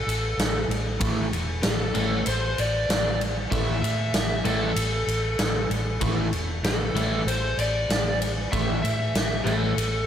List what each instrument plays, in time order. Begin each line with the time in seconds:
Already playing: lead electric guitar A4
0.07 fingered electric bass A1, ride
0.38 fingered electric bass A1, snare, ride
0.69 fingered electric bass A1, ride
1.00 fingered electric bass A1, overdriven electric guitar A2 E3 A3, kick, ride
1.32 fingered electric bass E1, ride
1.63 fingered electric bass A1, lead electric guitar A4, snare, ride
1.94 fingered electric bass A1, overdriven electric guitar A2 E3 A3, ride
2.26 fingered electric bass A1, lead electric guitar C5, ride
2.58 fingered electric bass A1, lead electric guitar D5, ride
2.89 fingered electric bass A1, snare, ride
3.21 ride
3.51 fingered electric bass A1, overdriven electric guitar A2 E3 A3, lead electric guitar E5, kick, ride
3.82 fingered electric bass A2, lead electric guitar E5, ride
4.13 fingered electric bass A1, snare, ride
4.45 fingered electric bass A1, overdriven electric guitar A2 E3 A3, lead electric guitar A4, ride
4.76 fingered electric bass A1, ride
5.07 fingered electric bass A1, ride
5.39 fingered electric bass A1, snare, ride
5.70 fingered electric bass A1, ride
6.01 fingered electric bass A1, overdriven electric guitar A2 E3 A3, kick, ride
6.32 fingered electric bass E1, ride
6.63 fingered electric bass A1, lead electric guitar A4, snare, ride
6.93 fingered electric bass A1, overdriven electric guitar A2 E3 A3, ride
7.25 fingered electric bass A1, lead electric guitar C5, ride
7.57 fingered electric bass A1, lead electric guitar D5, ride
7.89 fingered electric bass A1, snare, ride
8.22 ride
8.52 fingered electric bass A1, overdriven electric guitar A2 E3 A3, lead electric guitar E5, kick, ride
8.82 fingered electric bass A2, lead electric guitar E5, ride
9.14 fingered electric bass A1, snare, ride
9.44 fingered electric bass A1, overdriven electric guitar A2 E3 A3, lead electric guitar A4, ride
9.77 fingered electric bass A1, ride